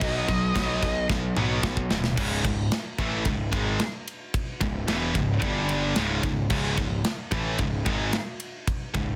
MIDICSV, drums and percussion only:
0, 0, Header, 1, 2, 480
1, 0, Start_track
1, 0, Key_signature, 4, "minor"
1, 0, Tempo, 541028
1, 12, Time_signature, 4, 2, 24, 8
1, 8124, End_track
2, 0, Start_track
2, 0, Title_t, "Drums"
2, 12, Note_on_c, 9, 36, 115
2, 12, Note_on_c, 9, 49, 87
2, 101, Note_off_c, 9, 36, 0
2, 101, Note_off_c, 9, 49, 0
2, 253, Note_on_c, 9, 36, 86
2, 255, Note_on_c, 9, 49, 56
2, 342, Note_off_c, 9, 36, 0
2, 344, Note_off_c, 9, 49, 0
2, 493, Note_on_c, 9, 36, 113
2, 499, Note_on_c, 9, 49, 77
2, 501, Note_on_c, 9, 38, 117
2, 582, Note_off_c, 9, 36, 0
2, 588, Note_off_c, 9, 49, 0
2, 590, Note_off_c, 9, 38, 0
2, 733, Note_on_c, 9, 36, 74
2, 735, Note_on_c, 9, 49, 57
2, 821, Note_off_c, 9, 36, 0
2, 824, Note_off_c, 9, 49, 0
2, 971, Note_on_c, 9, 36, 106
2, 975, Note_on_c, 9, 38, 67
2, 1060, Note_off_c, 9, 36, 0
2, 1064, Note_off_c, 9, 38, 0
2, 1211, Note_on_c, 9, 47, 75
2, 1300, Note_off_c, 9, 47, 0
2, 1450, Note_on_c, 9, 36, 113
2, 1450, Note_on_c, 9, 38, 93
2, 1538, Note_off_c, 9, 36, 0
2, 1538, Note_off_c, 9, 38, 0
2, 1570, Note_on_c, 9, 36, 83
2, 1658, Note_off_c, 9, 36, 0
2, 1691, Note_on_c, 9, 38, 101
2, 1780, Note_off_c, 9, 38, 0
2, 1808, Note_on_c, 9, 38, 96
2, 1897, Note_off_c, 9, 38, 0
2, 1929, Note_on_c, 9, 57, 126
2, 1930, Note_on_c, 9, 36, 110
2, 2017, Note_off_c, 9, 57, 0
2, 2018, Note_off_c, 9, 36, 0
2, 2170, Note_on_c, 9, 36, 85
2, 2171, Note_on_c, 9, 51, 74
2, 2258, Note_off_c, 9, 36, 0
2, 2260, Note_off_c, 9, 51, 0
2, 2410, Note_on_c, 9, 51, 98
2, 2412, Note_on_c, 9, 38, 115
2, 2499, Note_off_c, 9, 51, 0
2, 2501, Note_off_c, 9, 38, 0
2, 2648, Note_on_c, 9, 36, 97
2, 2648, Note_on_c, 9, 51, 70
2, 2737, Note_off_c, 9, 36, 0
2, 2737, Note_off_c, 9, 51, 0
2, 2884, Note_on_c, 9, 51, 104
2, 2888, Note_on_c, 9, 36, 92
2, 2973, Note_off_c, 9, 51, 0
2, 2977, Note_off_c, 9, 36, 0
2, 3128, Note_on_c, 9, 51, 78
2, 3129, Note_on_c, 9, 36, 107
2, 3217, Note_off_c, 9, 51, 0
2, 3218, Note_off_c, 9, 36, 0
2, 3367, Note_on_c, 9, 51, 100
2, 3370, Note_on_c, 9, 38, 114
2, 3456, Note_off_c, 9, 51, 0
2, 3459, Note_off_c, 9, 38, 0
2, 3616, Note_on_c, 9, 51, 71
2, 3705, Note_off_c, 9, 51, 0
2, 3851, Note_on_c, 9, 36, 103
2, 3855, Note_on_c, 9, 51, 96
2, 3940, Note_off_c, 9, 36, 0
2, 3944, Note_off_c, 9, 51, 0
2, 4089, Note_on_c, 9, 51, 72
2, 4090, Note_on_c, 9, 36, 92
2, 4178, Note_off_c, 9, 51, 0
2, 4179, Note_off_c, 9, 36, 0
2, 4330, Note_on_c, 9, 51, 96
2, 4332, Note_on_c, 9, 38, 109
2, 4418, Note_off_c, 9, 51, 0
2, 4421, Note_off_c, 9, 38, 0
2, 4569, Note_on_c, 9, 36, 81
2, 4570, Note_on_c, 9, 51, 62
2, 4658, Note_off_c, 9, 36, 0
2, 4658, Note_off_c, 9, 51, 0
2, 4806, Note_on_c, 9, 51, 94
2, 4809, Note_on_c, 9, 36, 111
2, 4895, Note_off_c, 9, 51, 0
2, 4897, Note_off_c, 9, 36, 0
2, 5047, Note_on_c, 9, 51, 72
2, 5136, Note_off_c, 9, 51, 0
2, 5286, Note_on_c, 9, 51, 102
2, 5289, Note_on_c, 9, 38, 114
2, 5375, Note_off_c, 9, 51, 0
2, 5377, Note_off_c, 9, 38, 0
2, 5530, Note_on_c, 9, 51, 82
2, 5531, Note_on_c, 9, 36, 94
2, 5619, Note_off_c, 9, 51, 0
2, 5620, Note_off_c, 9, 36, 0
2, 5765, Note_on_c, 9, 57, 97
2, 5770, Note_on_c, 9, 36, 103
2, 5854, Note_off_c, 9, 57, 0
2, 5859, Note_off_c, 9, 36, 0
2, 6010, Note_on_c, 9, 51, 78
2, 6012, Note_on_c, 9, 36, 89
2, 6099, Note_off_c, 9, 51, 0
2, 6100, Note_off_c, 9, 36, 0
2, 6251, Note_on_c, 9, 51, 103
2, 6253, Note_on_c, 9, 38, 112
2, 6339, Note_off_c, 9, 51, 0
2, 6342, Note_off_c, 9, 38, 0
2, 6489, Note_on_c, 9, 51, 73
2, 6493, Note_on_c, 9, 36, 95
2, 6578, Note_off_c, 9, 51, 0
2, 6582, Note_off_c, 9, 36, 0
2, 6729, Note_on_c, 9, 51, 102
2, 6734, Note_on_c, 9, 36, 90
2, 6818, Note_off_c, 9, 51, 0
2, 6823, Note_off_c, 9, 36, 0
2, 6972, Note_on_c, 9, 51, 81
2, 6975, Note_on_c, 9, 36, 100
2, 7061, Note_off_c, 9, 51, 0
2, 7064, Note_off_c, 9, 36, 0
2, 7211, Note_on_c, 9, 51, 104
2, 7214, Note_on_c, 9, 38, 113
2, 7300, Note_off_c, 9, 51, 0
2, 7303, Note_off_c, 9, 38, 0
2, 7451, Note_on_c, 9, 51, 81
2, 7540, Note_off_c, 9, 51, 0
2, 7696, Note_on_c, 9, 36, 101
2, 7696, Note_on_c, 9, 51, 99
2, 7785, Note_off_c, 9, 36, 0
2, 7785, Note_off_c, 9, 51, 0
2, 7936, Note_on_c, 9, 51, 69
2, 7937, Note_on_c, 9, 36, 90
2, 8025, Note_off_c, 9, 51, 0
2, 8026, Note_off_c, 9, 36, 0
2, 8124, End_track
0, 0, End_of_file